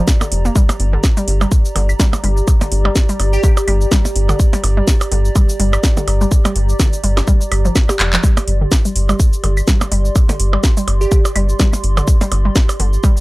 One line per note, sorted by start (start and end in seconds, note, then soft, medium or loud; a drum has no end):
0.00 13.20 G4 medium
0.00 13.20 D5 medium
0.00 8.07 A#5 medium
0.08 kick loud
0.08 snare medium
0.08 cabasa medium
0.21 0.26 D3 medium
0.21 percussion blips medium
0.21 cabasa soft
0.21 percussion blips medium
0.32 0.49 F1 medium
0.32 open hi-hat medium
0.45 0.50 A#3 medium
0.45 cabasa soft
0.56 0.59 G3 medium
0.56 kick loud
0.56 cabasa medium
0.69 open hi-hat soft
0.69 percussion blips medium
0.69 cabasa soft
0.69 percussion blips medium
0.80 0.97 G1 loud
0.80 open hi-hat medium
0.93 0.98 D3 medium
1.04 kick loud
1.04 snare medium
1.04 cabasa medium
1.04 percussion blips soft
1.17 1.19 G3 medium
1.17 open hi-hat soft
1.17 cabasa soft
1.28 1.45 G1 medium
1.28 open hi-hat loud
1.41 1.44 G3 medium
1.41 cabasa soft
1.41 percussion blips medium
1.52 kick loud
1.52 cabasa medium
1.65 cabasa soft
1.76 1.93 G1 medium
1.76 1.81 D3 medium
1.76 open hi-hat medium
1.76 percussion blips soft
1.89 cabasa soft
1.89 claves medium
2.00 2.02 G3 medium
2.00 kick loud
2.00 snare medium
2.00 cabasa medium
2.13 percussion blips medium
2.13 cabasa soft
2.13 percussion blips medium
2.24 2.41 G1 medium
2.24 2.27 G3 medium
2.24 open hi-hat loud
2.37 cabasa soft
2.48 kick loud
2.48 cabasa medium
2.48 percussion blips soft
2.61 2.66 D3 medium
2.61 open hi-hat soft
2.61 percussion blips medium
2.61 cabasa soft
2.72 2.89 G1 loud
2.72 open hi-hat medium
2.85 2.87 G3 medium
2.85 percussion blips medium
2.96 kick loud
2.96 snare medium
2.96 cabasa medium
3.09 3.12 G3 medium
3.09 open hi-hat soft
3.09 cabasa soft
3.20 3.37 G1 medium
3.20 open hi-hat medium
3.20 percussion blips soft
3.33 4.00 G4 medium
3.33 cabasa soft
3.44 3.49 D3 medium
3.44 kick loud
3.44 cabasa medium
3.57 cabasa soft
3.57 percussion blips medium
3.68 3.85 G1 medium
3.68 3.70 G3 medium
3.68 open hi-hat medium
3.68 claves medium
3.81 cabasa soft
3.92 3.95 G3 medium
3.92 kick loud
3.92 snare loud
3.92 cabasa medium
3.92 percussion blips soft
4.05 percussion blips medium
4.05 cabasa soft
4.16 4.33 G1 medium
4.16 open hi-hat medium
4.29 4.34 D3 medium
4.29 cabasa soft
4.29 percussion blips medium
4.40 kick loud
4.40 cabasa medium
4.53 4.55 G3 medium
4.53 open hi-hat soft
4.53 percussion blips medium
4.53 cabasa soft
4.64 4.81 G1 loud
4.64 open hi-hat medium
4.64 percussion blips soft
4.77 4.80 G3 medium
4.88 kick loud
4.88 snare medium
4.88 cabasa medium
5.01 open hi-hat soft
5.01 cabasa soft
5.01 percussion blips medium
5.12 5.29 G1 medium
5.12 5.17 D3 medium
5.12 open hi-hat medium
5.25 cabasa soft
5.36 5.38 G3 medium
5.36 kick loud
5.36 cabasa medium
5.36 percussion blips soft
5.49 cabasa soft
5.60 5.77 G1 medium
5.60 5.63 G3 medium
5.60 open hi-hat medium
5.73 cabasa soft
5.73 claves medium
5.73 percussion blips medium
5.84 kick loud
5.84 snare loud
5.84 cabasa medium
5.97 6.02 D3 medium
5.97 percussion blips medium
5.97 cabasa soft
6.08 6.25 G1 loud
6.08 open hi-hat medium
6.08 percussion blips soft
6.21 6.23 G3 medium
6.21 cabasa soft
6.32 kick loud
6.32 cabasa medium
6.45 6.48 G3 medium
6.45 open hi-hat soft
6.45 percussion blips loud
6.45 cabasa soft
6.45 percussion blips medium
6.56 6.73 G1 loud
6.56 open hi-hat medium
6.69 cabasa soft
6.80 6.85 D3 medium
6.80 kick loud
6.80 snare medium
6.80 cabasa medium
6.80 percussion blips soft
6.93 open hi-hat soft
6.93 cabasa soft
7.04 7.21 G1 medium
7.04 7.06 G3 medium
7.04 open hi-hat medium
7.17 snare medium
7.17 cabasa soft
7.17 percussion blips medium
7.28 7.31 G3 medium
7.28 kick loud
7.28 cabasa medium
7.41 cabasa soft
7.52 7.69 G1 medium
7.52 open hi-hat medium
7.52 claves medium
7.52 percussion blips soft
7.65 7.68 F3 medium
7.65 cabasa soft
7.76 kick loud
7.76 snare loud
7.76 cabasa medium
7.76 claves medium
7.89 7.91 G4 loud
7.89 13.20 C6 medium
7.89 percussion blips medium
7.89 cabasa soft
7.89 percussion blips medium
8.00 8.17 F1 medium
8.00 clap medium
8.00 open hi-hat medium
8.13 8.15 F3 medium
8.13 clap loud
8.13 cabasa soft
8.24 8.27 G3 medium
8.24 kick loud
8.24 cabasa medium
8.37 open hi-hat soft
8.37 percussion blips loud
8.37 cabasa soft
8.37 percussion blips medium
8.48 8.65 G1 loud
8.48 open hi-hat medium
8.61 8.66 D3 medium
8.72 kick loud
8.72 snare loud
8.72 cabasa medium
8.72 percussion blips soft
8.85 8.88 G3 medium
8.85 open hi-hat soft
8.85 cabasa soft
8.96 9.13 G1 medium
8.96 open hi-hat medium
9.09 9.12 G3 medium
9.09 cabasa soft
9.09 percussion blips medium
9.20 kick loud
9.20 cabasa medium
9.33 cabasa soft
9.44 9.61 G1 medium
9.44 9.49 D3 medium
9.44 open hi-hat medium
9.44 percussion blips soft
9.57 cabasa soft
9.57 claves medium
9.68 9.71 G3 medium
9.68 kick loud
9.68 snare loud
9.68 cabasa medium
9.81 percussion blips medium
9.81 cabasa soft
9.81 percussion blips medium
9.92 10.09 G1 medium
9.92 9.95 G3 medium
9.92 open hi-hat loud
10.05 cabasa soft
10.16 kick loud
10.16 cabasa medium
10.16 percussion blips soft
10.29 10.34 D3 medium
10.29 open hi-hat soft
10.29 percussion blips loud
10.29 cabasa soft
10.40 10.57 G1 loud
10.40 open hi-hat loud
10.53 10.56 G3 medium
10.53 percussion blips medium
10.64 kick loud
10.64 snare medium
10.64 cabasa medium
10.77 10.80 G3 medium
10.77 open hi-hat soft
10.77 cabasa soft
10.88 11.05 G1 medium
10.88 open hi-hat loud
10.88 percussion blips soft
11.01 11.68 G4 medium
11.01 cabasa soft
11.12 11.17 D3 medium
11.12 kick loud
11.12 cabasa medium
11.25 cabasa soft
11.25 percussion blips medium
11.36 11.53 G1 medium
11.36 11.40 G3 medium
11.36 open hi-hat medium
11.36 claves medium
11.49 cabasa soft
11.60 11.64 G3 medium
11.60 kick loud
11.60 snare loud
11.60 cabasa medium
11.60 percussion blips soft
11.73 percussion blips medium
11.73 cabasa soft
11.84 12.01 G1 medium
11.84 open hi-hat medium
11.97 12.02 D3 medium
11.97 cabasa soft
11.97 percussion blips medium
12.08 kick loud
12.08 cabasa medium
12.21 12.24 G3 medium
12.21 open hi-hat soft
12.21 percussion blips medium
12.21 cabasa soft
12.32 12.49 G1 loud
12.32 open hi-hat loud
12.32 percussion blips soft
12.45 12.48 G3 medium
12.56 kick loud
12.56 snare loud
12.56 cabasa medium
12.69 open hi-hat soft
12.69 cabasa soft
12.69 percussion blips medium
12.80 12.97 G1 medium
12.80 12.85 D3 medium
12.80 open hi-hat loud
12.93 cabasa soft
13.04 13.07 G3 medium
13.04 kick loud
13.04 cabasa medium
13.04 percussion blips soft
13.17 cabasa soft